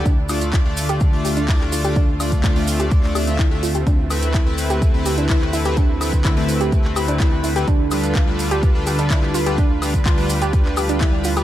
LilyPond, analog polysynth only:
\new Staff \with { instrumentName = "Analog polysynth" } { \time 4/4 \key d \dorian \tempo 4 = 126 r8 <a d' f' d''>8. <a d' f' d''>4 <a d' f' d''>8. <a d' f' d''>8. <a d' f' d''>16 | r8 <a d' f' d''>8. <a d' f' d''>4 <a d' f' d''>16 <a d' f' d''>16 <a d' f' e''>16 r16 <a d' f' e''>16 r8 | r8 <a c' e' b'>8. <a c' e' b'>4 <a c' e' b'>8. <a c' e' b'>8. <a c' e' b'>16 | r8 <a c' e' b'>8. <a c' e' b'>4 <a c' e' b'>8. <a c' e' b'>8. <a c' e' b'>16 |
r8 <g d' f' b'>8. <g d' f' b'>4 <g d' f' b'>8. <g d' f' b'>8. <g d' f' b'>16 | r8 <g d' f' b'>8. <g d' f' b'>4 <g d' f' b'>8. <g d' f' b'>8. <g d' f' b'>16 | }